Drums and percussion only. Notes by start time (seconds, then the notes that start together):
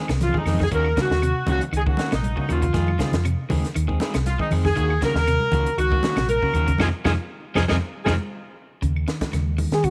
0.08 snare, closed hi-hat, claves
0.21 snare, closed hi-hat, low conga
0.29 low conga
0.34 kick, low conga
0.46 snare, open hi-hat, claves
0.54 low conga
0.60 kick, snare, low conga
0.72 kick, closed hi-hat
0.85 claves
0.97 kick, snare, closed hi-hat, high conga
1.11 snare
1.22 closed hi-hat, claves
1.47 kick, closed hi-hat, high conga, low conga
1.61 closed hi-hat
1.73 closed hi-hat, claves
1.87 kick
1.97 snare, closed hi-hat, high conga
2.12 snare, closed hi-hat, claves
2.23 closed hi-hat, high conga
2.37 kick
2.49 closed hi-hat, low conga, claves
2.62 kick, closed hi-hat
2.74 kick, snare, closed hi-hat
2.87 high conga, claves
2.99 kick, snare, closed hi-hat, high conga
3.12 snare, closed hi-hat, low conga
3.25 closed hi-hat, claves
3.50 kick, open hi-hat, high conga, low conga
3.65 snare, closed hi-hat
3.76 closed hi-hat, claves
3.89 kick
4.00 snare, closed hi-hat, high conga
4.14 snare, closed hi-hat, claves
4.26 snare, closed hi-hat, high conga
4.39 kick
4.51 open hi-hat, low conga, claves
4.65 kick, snare
4.77 kick, closed hi-hat
4.90 claves
5.01 kick, snare, closed hi-hat, high conga
5.14 snare, low conga
5.27 closed hi-hat, claves
5.40 high conga
5.52 kick, closed hi-hat, high conga, low conga
5.66 closed hi-hat
5.78 closed hi-hat, claves
5.90 kick, high conga
6.03 snare, closed hi-hat, high conga
6.17 snare, closed hi-hat, claves
6.28 closed hi-hat, high conga
6.42 kick
6.54 closed hi-hat, high conga, low conga, claves
6.68 kick, closed hi-hat
6.78 kick, snare, high conga, claves
7.05 kick, snare, high conga, claves
7.55 kick, snare, high conga, claves
7.69 kick, snare, high conga, claves
8.06 kick, snare, high conga, claves
8.83 kick, closed hi-hat
8.96 claves
9.08 snare, closed hi-hat
9.21 kick, snare, closed hi-hat, high conga
9.33 snare, closed hi-hat, high conga, claves
9.58 open hi-hat, high conga, low conga
9.72 snare, closed hi-hat, high conga
9.84 kick, closed hi-hat, claves